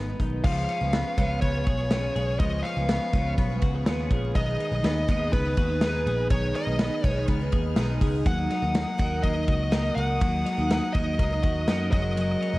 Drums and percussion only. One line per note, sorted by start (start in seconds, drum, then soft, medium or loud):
0.20 kick medium
0.20 closed hi-hat medium
0.44 kick loud
0.44 crash loud
0.69 ride medium
0.93 snare loud
0.93 ride medium
1.18 kick loud
1.18 ride medium
1.42 kick medium
1.42 ride medium
1.67 kick loud
1.67 ride medium
1.91 snare loud
1.91 ride medium
2.16 ride medium
2.40 kick loud
2.40 ride medium
2.65 snare soft
2.65 ride medium
2.89 snare loud
2.89 ride medium
3.13 kick loud
3.13 ride medium
3.38 kick medium
3.38 ride medium
3.62 kick loud
3.62 ride medium
3.86 snare loud
3.86 ride medium
4.11 kick loud
4.11 ride medium
4.35 kick loud
4.35 ride medium
4.60 ride medium
4.84 snare loud
4.84 ride medium
5.09 kick loud
5.09 ride medium
5.33 kick medium
5.33 ride medium
5.57 kick loud
5.57 ride medium
5.81 snare loud
5.81 ride medium
6.07 ride medium
6.30 kick loud
6.30 ride medium
6.55 snare soft
6.55 ride medium
6.79 snare loud
6.79 ride medium
7.04 kick loud
7.04 ride medium
7.28 kick medium
7.28 ride medium
7.52 kick loud
7.52 ride medium
7.76 snare loud
7.76 ride medium
8.01 kick loud
8.01 open hi-hat medium
8.01 ride medium
8.26 kick loud
8.26 hi-hat pedal medium
8.26 ride medium
8.50 snare soft
8.50 ride medium
8.75 snare loud
8.75 ride medium
8.99 kick loud
8.99 ride medium
9.23 kick medium
9.23 ride medium
9.48 kick loud
9.48 ride medium
9.72 snare loud
9.72 ride medium
9.98 ride medium
10.21 kick loud
10.21 ride medium
10.46 snare soft
10.46 ride medium
10.70 snare loud
10.70 ride medium
10.95 kick loud
10.95 ride medium
11.19 kick medium
11.19 ride medium
11.43 kick loud
11.43 ride medium
11.68 snare loud
11.68 ride medium
11.93 kick loud
11.93 ride medium
12.17 ride loud
12.42 ride medium